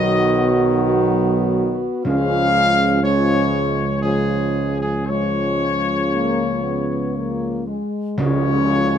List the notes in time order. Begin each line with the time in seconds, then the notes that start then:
Already playing: B1 D#3 F#3 B3 F#4 D#5
2.05 C#2 C#3 F3 G#3 C#4 F5
3.02 C#3 F3 G#3 C#4 C#5
4.01 C#3 F3 G#3 C#4 G#4
4.80 G#4
5.07 C#3 F3 G#3 C#4 C#5
6.12 A#3
6.63 B3
7.15 A#3
7.67 G#3
8.18 C#2 C#3 F3 G#3 C#4 C#5, tam-tam